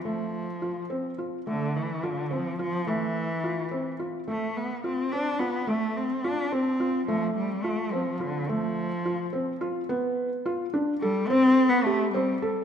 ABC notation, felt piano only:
X:1
M:5/8
L:1/8
Q:1/4=107
K:Flyd
V:1 name="Felt piano"
A,2 F C F | A,2 F C F | A,2 F C F | A,2 F C F |
A,2 F C F | A,2 F C F | A,2 F C F | B,2 F D A |
C2 G C A |]